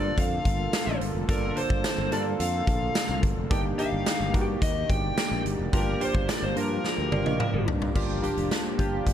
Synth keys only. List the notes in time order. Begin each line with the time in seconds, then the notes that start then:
Already playing: A#3 D4 F4 A4
1.28 A#3 D4 F4 A4
1.56 A#3 D4 F4 A4
2.11 A#3 D4 F4 A4
3.50 A#3 D4 D#4 G4
3.78 A#3 D4 D#4 G4
4.33 A#3 D4 D#4 F#4
4.41 G4
5.72 A#3 D4 F4 G4
6.00 A#3 D4 F4 G4
6.56 A#3 D4 F4 A#4
7.95 A#3 D4 F4 G4
8.22 A#3 D4 F4 G4
8.78 A#3 D4 F4 G4